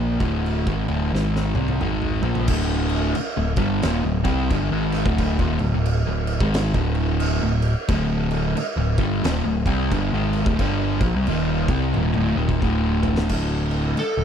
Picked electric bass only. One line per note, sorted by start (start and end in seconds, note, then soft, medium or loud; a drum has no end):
0.00 0.17 A#1 loud
0.20 0.64 D1 medium
0.67 0.86 G#1 medium
0.88 1.12 D1 loud
1.14 1.53 G#1 loud
1.55 1.79 C2 medium
1.80 2.20 G#1 loud
2.22 2.47 A#1 medium
2.48 3.12 D1 medium
3.18 muted picked electric bass stroke soft
3.37 3.56 D1 medium
3.57 3.82 G1 loud
3.83 4.02 D#1 loud
4.03 4.23 D1 medium
4.25 4.50 C2 loud
4.51 4.70 G1 loud
4.72 5.03 G#1 loud
5.06 5.37 D1 loud
5.40 5.59 D#1 medium
5.61 5.73 D1 medium
5.73 6.05 D1 medium
6.07 6.38 D1 medium
6.40 6.72 G#1 loud
6.74 7.38 D1 loud
7.42 7.73 D1 medium
7.89 8.52 D1 loud
8.56 muted picked electric bass stroke soft
8.76 8.96 D1 medium
8.98 9.22 G1 loud
9.23 9.43 D#1 loud
9.44 9.64 D1 medium
9.66 9.90 C2 loud
9.91 10.11 G1 loud
10.12 10.44 G#1 loud
10.46 10.58 D1 loud
10.59 10.98 G1 medium
11.00 11.13 A#1 loud
11.14 11.26 C2 loud
11.26 11.65 D#1 loud
11.69 11.93 C2 loud
11.95 12.14 D#1 medium
12.16 12.35 D1 loud
12.36 12.60 D#1 medium
12.62 13.26 D1 loud
13.29 13.93 D1 medium
13.97 muted picked electric bass stroke soft
14.17 14.24 D1 medium